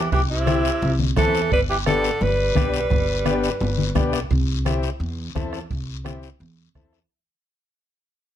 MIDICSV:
0, 0, Header, 1, 7, 480
1, 0, Start_track
1, 0, Key_signature, 0, "major"
1, 0, Tempo, 348837
1, 168, Time_signature, 4, 2, 24, 8
1, 11490, End_track
2, 0, Start_track
2, 0, Title_t, "Alto saxophone"
2, 0, Program_c, 0, 65
2, 191, Note_on_c, 0, 67, 93
2, 294, Note_off_c, 0, 67, 0
2, 418, Note_on_c, 0, 64, 97
2, 1316, Note_off_c, 0, 64, 0
2, 1612, Note_on_c, 0, 69, 103
2, 2055, Note_off_c, 0, 69, 0
2, 2104, Note_on_c, 0, 71, 104
2, 2207, Note_off_c, 0, 71, 0
2, 2335, Note_on_c, 0, 67, 87
2, 2440, Note_off_c, 0, 67, 0
2, 2572, Note_on_c, 0, 69, 107
2, 3062, Note_on_c, 0, 71, 87
2, 3083, Note_off_c, 0, 69, 0
2, 5450, Note_off_c, 0, 71, 0
2, 11490, End_track
3, 0, Start_track
3, 0, Title_t, "Transistor combo organ"
3, 0, Program_c, 1, 18
3, 634, Note_on_c, 1, 60, 78
3, 640, Note_on_c, 1, 64, 65
3, 643, Note_on_c, 1, 67, 78
3, 976, Note_off_c, 1, 60, 0
3, 979, Note_off_c, 1, 64, 0
3, 981, Note_off_c, 1, 67, 0
3, 1604, Note_on_c, 1, 60, 70
3, 1611, Note_on_c, 1, 64, 66
3, 1618, Note_on_c, 1, 69, 77
3, 1940, Note_off_c, 1, 60, 0
3, 1944, Note_off_c, 1, 64, 0
3, 1947, Note_off_c, 1, 69, 0
3, 2563, Note_on_c, 1, 59, 75
3, 2567, Note_on_c, 1, 62, 69
3, 2570, Note_on_c, 1, 67, 86
3, 2899, Note_off_c, 1, 59, 0
3, 2901, Note_off_c, 1, 62, 0
3, 2903, Note_off_c, 1, 67, 0
3, 3516, Note_on_c, 1, 59, 63
3, 3520, Note_on_c, 1, 62, 59
3, 3523, Note_on_c, 1, 67, 76
3, 3854, Note_off_c, 1, 59, 0
3, 3857, Note_off_c, 1, 62, 0
3, 3858, Note_off_c, 1, 67, 0
3, 4473, Note_on_c, 1, 59, 76
3, 4481, Note_on_c, 1, 62, 81
3, 4486, Note_on_c, 1, 67, 98
3, 4813, Note_off_c, 1, 59, 0
3, 4817, Note_off_c, 1, 62, 0
3, 4819, Note_off_c, 1, 67, 0
3, 5435, Note_on_c, 1, 59, 78
3, 5440, Note_on_c, 1, 62, 78
3, 5447, Note_on_c, 1, 67, 94
3, 5773, Note_off_c, 1, 59, 0
3, 5776, Note_off_c, 1, 62, 0
3, 5779, Note_off_c, 1, 67, 0
3, 6405, Note_on_c, 1, 60, 82
3, 6411, Note_on_c, 1, 64, 77
3, 6415, Note_on_c, 1, 67, 89
3, 6738, Note_off_c, 1, 60, 0
3, 6741, Note_off_c, 1, 64, 0
3, 6743, Note_off_c, 1, 67, 0
3, 7364, Note_on_c, 1, 60, 87
3, 7372, Note_on_c, 1, 64, 73
3, 7377, Note_on_c, 1, 69, 83
3, 7698, Note_off_c, 1, 60, 0
3, 7702, Note_off_c, 1, 64, 0
3, 7704, Note_off_c, 1, 69, 0
3, 8318, Note_on_c, 1, 60, 81
3, 8322, Note_on_c, 1, 64, 71
3, 8324, Note_on_c, 1, 67, 83
3, 8656, Note_off_c, 1, 60, 0
3, 8658, Note_off_c, 1, 64, 0
3, 8658, Note_off_c, 1, 67, 0
3, 9289, Note_on_c, 1, 60, 71
3, 9297, Note_on_c, 1, 64, 63
3, 9304, Note_on_c, 1, 69, 85
3, 9622, Note_off_c, 1, 60, 0
3, 9626, Note_off_c, 1, 64, 0
3, 9629, Note_off_c, 1, 69, 0
3, 11490, End_track
4, 0, Start_track
4, 0, Title_t, "Tenor saxophone"
4, 0, Program_c, 2, 66
4, 170, Note_on_c, 2, 52, 80
4, 277, Note_off_c, 2, 52, 0
4, 410, Note_on_c, 2, 48, 77
4, 1312, Note_off_c, 2, 48, 0
4, 1620, Note_on_c, 2, 52, 85
4, 2059, Note_off_c, 2, 52, 0
4, 2094, Note_on_c, 2, 55, 92
4, 2200, Note_off_c, 2, 55, 0
4, 2338, Note_on_c, 2, 52, 76
4, 2443, Note_off_c, 2, 52, 0
4, 2566, Note_on_c, 2, 50, 70
4, 3052, Note_on_c, 2, 55, 80
4, 3072, Note_off_c, 2, 50, 0
4, 5444, Note_off_c, 2, 55, 0
4, 11490, End_track
5, 0, Start_track
5, 0, Title_t, "Upright bass"
5, 0, Program_c, 3, 32
5, 166, Note_on_c, 3, 36, 82
5, 933, Note_off_c, 3, 36, 0
5, 1135, Note_on_c, 3, 36, 92
5, 1515, Note_off_c, 3, 36, 0
5, 1607, Note_on_c, 3, 40, 83
5, 1990, Note_off_c, 3, 40, 0
5, 2093, Note_on_c, 3, 31, 83
5, 2856, Note_off_c, 3, 31, 0
5, 3049, Note_on_c, 3, 31, 88
5, 3430, Note_off_c, 3, 31, 0
5, 3531, Note_on_c, 3, 35, 79
5, 3911, Note_off_c, 3, 35, 0
5, 4012, Note_on_c, 3, 31, 89
5, 4775, Note_off_c, 3, 31, 0
5, 4968, Note_on_c, 3, 31, 92
5, 5349, Note_off_c, 3, 31, 0
5, 5446, Note_on_c, 3, 35, 83
5, 5827, Note_off_c, 3, 35, 0
5, 5925, Note_on_c, 3, 36, 107
5, 6691, Note_off_c, 3, 36, 0
5, 6878, Note_on_c, 3, 40, 105
5, 7263, Note_off_c, 3, 40, 0
5, 7371, Note_on_c, 3, 40, 81
5, 7751, Note_off_c, 3, 40, 0
5, 7852, Note_on_c, 3, 36, 97
5, 8616, Note_off_c, 3, 36, 0
5, 8809, Note_on_c, 3, 40, 97
5, 9190, Note_off_c, 3, 40, 0
5, 9290, Note_on_c, 3, 40, 72
5, 9671, Note_off_c, 3, 40, 0
5, 11490, End_track
6, 0, Start_track
6, 0, Title_t, "Two-headed folk drums"
6, 167, Note_on_c, 9, 36, 86
6, 305, Note_off_c, 9, 36, 0
6, 652, Note_on_c, 9, 37, 91
6, 789, Note_off_c, 9, 37, 0
6, 1602, Note_on_c, 9, 37, 64
6, 1610, Note_on_c, 9, 36, 76
6, 1740, Note_off_c, 9, 37, 0
6, 1747, Note_off_c, 9, 36, 0
6, 2091, Note_on_c, 9, 36, 81
6, 2228, Note_off_c, 9, 36, 0
6, 2565, Note_on_c, 9, 37, 90
6, 2702, Note_off_c, 9, 37, 0
6, 3529, Note_on_c, 9, 36, 72
6, 3529, Note_on_c, 9, 37, 70
6, 3666, Note_off_c, 9, 36, 0
6, 3666, Note_off_c, 9, 37, 0
6, 4008, Note_on_c, 9, 36, 88
6, 4146, Note_off_c, 9, 36, 0
6, 4482, Note_on_c, 9, 37, 85
6, 4620, Note_off_c, 9, 37, 0
6, 5444, Note_on_c, 9, 36, 75
6, 5446, Note_on_c, 9, 37, 69
6, 5582, Note_off_c, 9, 36, 0
6, 5584, Note_off_c, 9, 37, 0
6, 5686, Note_on_c, 9, 37, 68
6, 5824, Note_off_c, 9, 37, 0
6, 5928, Note_on_c, 9, 36, 85
6, 6065, Note_off_c, 9, 36, 0
6, 6416, Note_on_c, 9, 37, 87
6, 6553, Note_off_c, 9, 37, 0
6, 7372, Note_on_c, 9, 36, 71
6, 7377, Note_on_c, 9, 37, 67
6, 7510, Note_off_c, 9, 36, 0
6, 7515, Note_off_c, 9, 37, 0
6, 7607, Note_on_c, 9, 37, 75
6, 7745, Note_off_c, 9, 37, 0
6, 7850, Note_on_c, 9, 36, 79
6, 7987, Note_off_c, 9, 36, 0
6, 8336, Note_on_c, 9, 37, 85
6, 8473, Note_off_c, 9, 37, 0
6, 9290, Note_on_c, 9, 36, 69
6, 9293, Note_on_c, 9, 37, 64
6, 9428, Note_off_c, 9, 36, 0
6, 9431, Note_off_c, 9, 37, 0
6, 9531, Note_on_c, 9, 37, 60
6, 9669, Note_off_c, 9, 37, 0
6, 11490, End_track
7, 0, Start_track
7, 0, Title_t, "Drums"
7, 170, Note_on_c, 9, 74, 76
7, 176, Note_on_c, 9, 64, 71
7, 307, Note_off_c, 9, 74, 0
7, 313, Note_off_c, 9, 64, 0
7, 647, Note_on_c, 9, 63, 76
7, 651, Note_on_c, 9, 73, 71
7, 784, Note_off_c, 9, 63, 0
7, 788, Note_off_c, 9, 73, 0
7, 895, Note_on_c, 9, 73, 75
7, 1032, Note_off_c, 9, 73, 0
7, 1132, Note_on_c, 9, 64, 75
7, 1137, Note_on_c, 9, 74, 68
7, 1270, Note_off_c, 9, 64, 0
7, 1275, Note_off_c, 9, 74, 0
7, 1368, Note_on_c, 9, 63, 68
7, 1506, Note_off_c, 9, 63, 0
7, 1603, Note_on_c, 9, 63, 86
7, 1603, Note_on_c, 9, 64, 80
7, 1609, Note_on_c, 9, 73, 66
7, 1741, Note_off_c, 9, 63, 0
7, 1741, Note_off_c, 9, 64, 0
7, 1747, Note_off_c, 9, 73, 0
7, 1853, Note_on_c, 9, 73, 70
7, 1990, Note_off_c, 9, 73, 0
7, 2089, Note_on_c, 9, 74, 69
7, 2226, Note_off_c, 9, 74, 0
7, 2573, Note_on_c, 9, 73, 72
7, 2574, Note_on_c, 9, 63, 90
7, 2710, Note_off_c, 9, 73, 0
7, 2711, Note_off_c, 9, 63, 0
7, 2811, Note_on_c, 9, 73, 81
7, 2949, Note_off_c, 9, 73, 0
7, 3041, Note_on_c, 9, 64, 78
7, 3051, Note_on_c, 9, 74, 61
7, 3179, Note_off_c, 9, 64, 0
7, 3189, Note_off_c, 9, 74, 0
7, 3515, Note_on_c, 9, 63, 92
7, 3528, Note_on_c, 9, 73, 52
7, 3652, Note_off_c, 9, 63, 0
7, 3666, Note_off_c, 9, 73, 0
7, 3764, Note_on_c, 9, 73, 72
7, 3902, Note_off_c, 9, 73, 0
7, 3996, Note_on_c, 9, 64, 72
7, 4006, Note_on_c, 9, 74, 74
7, 4134, Note_off_c, 9, 64, 0
7, 4144, Note_off_c, 9, 74, 0
7, 4482, Note_on_c, 9, 63, 80
7, 4484, Note_on_c, 9, 73, 73
7, 4620, Note_off_c, 9, 63, 0
7, 4621, Note_off_c, 9, 73, 0
7, 4727, Note_on_c, 9, 73, 76
7, 4865, Note_off_c, 9, 73, 0
7, 4960, Note_on_c, 9, 74, 75
7, 4967, Note_on_c, 9, 64, 74
7, 5098, Note_off_c, 9, 74, 0
7, 5104, Note_off_c, 9, 64, 0
7, 5202, Note_on_c, 9, 63, 70
7, 5339, Note_off_c, 9, 63, 0
7, 5441, Note_on_c, 9, 63, 87
7, 5441, Note_on_c, 9, 64, 64
7, 5449, Note_on_c, 9, 73, 66
7, 5579, Note_off_c, 9, 63, 0
7, 5579, Note_off_c, 9, 64, 0
7, 5586, Note_off_c, 9, 73, 0
7, 5684, Note_on_c, 9, 73, 75
7, 5821, Note_off_c, 9, 73, 0
7, 5925, Note_on_c, 9, 74, 74
7, 6062, Note_off_c, 9, 74, 0
7, 6411, Note_on_c, 9, 73, 71
7, 6412, Note_on_c, 9, 63, 78
7, 6549, Note_off_c, 9, 73, 0
7, 6550, Note_off_c, 9, 63, 0
7, 6649, Note_on_c, 9, 73, 74
7, 6787, Note_off_c, 9, 73, 0
7, 6897, Note_on_c, 9, 74, 61
7, 7034, Note_off_c, 9, 74, 0
7, 7370, Note_on_c, 9, 63, 79
7, 7378, Note_on_c, 9, 73, 56
7, 7507, Note_off_c, 9, 63, 0
7, 7516, Note_off_c, 9, 73, 0
7, 7618, Note_on_c, 9, 73, 70
7, 7755, Note_off_c, 9, 73, 0
7, 7853, Note_on_c, 9, 74, 75
7, 7991, Note_off_c, 9, 74, 0
7, 8336, Note_on_c, 9, 63, 70
7, 8336, Note_on_c, 9, 73, 64
7, 8474, Note_off_c, 9, 63, 0
7, 8474, Note_off_c, 9, 73, 0
7, 8573, Note_on_c, 9, 73, 71
7, 8711, Note_off_c, 9, 73, 0
7, 8819, Note_on_c, 9, 74, 69
7, 8956, Note_off_c, 9, 74, 0
7, 9294, Note_on_c, 9, 63, 70
7, 9303, Note_on_c, 9, 73, 50
7, 9431, Note_off_c, 9, 63, 0
7, 9440, Note_off_c, 9, 73, 0
7, 9536, Note_on_c, 9, 73, 63
7, 9674, Note_off_c, 9, 73, 0
7, 11490, End_track
0, 0, End_of_file